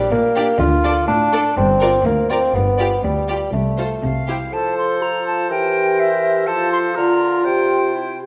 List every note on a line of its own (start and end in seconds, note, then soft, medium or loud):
0.00 0.11 G3 medium
0.11 0.50 A#2 medium
0.11 0.59 A#3 medium
0.36 0.44 D4 soft
0.36 0.44 G4 soft
0.36 0.44 D5 soft
0.59 0.98 D2 medium
0.59 0.99 D3 medium
0.59 1.07 F4 medium
0.84 0.92 D4 soft
0.84 0.92 A4 soft
0.84 0.92 D5 soft
1.08 1.47 A2 medium
1.08 1.56 D4 medium
1.32 1.41 D4 soft
1.32 1.41 A4 soft
1.32 1.40 D5 soft
1.57 1.95 G1 medium
1.57 1.96 G2 medium
1.57 2.05 C4 medium
1.81 1.89 F4 soft
1.81 1.89 A#4 soft
1.81 1.90 D5 soft
2.06 2.44 D2 medium
2.06 2.31 A#3 medium
2.30 2.56 C4 medium
2.30 2.38 F4 soft
2.30 2.38 A#4 soft
2.30 2.38 D5 soft
2.54 2.93 G1 medium
2.54 2.93 G2 medium
2.54 3.03 B3 medium
2.79 2.87 F4 soft
2.79 2.87 G4 soft
2.79 2.87 D5 soft
3.04 3.43 D2 soft
3.04 3.52 G3 medium
3.28 3.37 F4 soft
3.28 3.36 G4 soft
3.28 3.36 D5 soft
3.53 3.93 C2 soft
3.53 3.93 C3 soft
3.53 4.26 A3 soft
3.77 3.86 F4 soft
3.77 3.86 A4 soft
3.77 3.85 C5 soft
4.03 4.42 C2 soft
4.03 4.42 C3 soft
4.03 4.55 F5 soft
4.28 4.36 E4 soft
4.28 4.36 G4 soft
4.28 4.36 C5 soft
4.53 5.46 F3 soft
4.53 5.51 A4 soft
4.53 4.98 A4 soft
4.53 6.44 C5 soft
4.53 4.77 A5 medium
4.78 5.03 C6 medium
5.02 5.50 F4 soft
5.02 5.26 A#5 medium
5.27 5.50 A5 medium
5.50 6.46 E3 soft
5.50 6.45 G4 medium
5.50 6.48 A#4 soft
5.50 6.01 G5 medium
6.00 6.48 E5 medium
6.47 6.95 F3 medium
6.47 6.95 F4 medium
6.47 6.97 A4 medium
6.47 6.97 C5 medium
6.47 6.71 A5 medium
6.72 6.78 C6 medium
6.96 7.47 D3 medium
6.96 7.96 F4 medium
6.96 7.44 F4 medium
6.96 7.46 A#4 soft
6.96 7.44 A#5 medium
7.45 8.20 C3 soft
7.45 7.89 G4 soft
7.45 8.19 C5 soft
7.45 8.18 G5 medium
7.94 8.05 E4 soft
7.94 8.19 E4 soft
8.19 8.26 G4 soft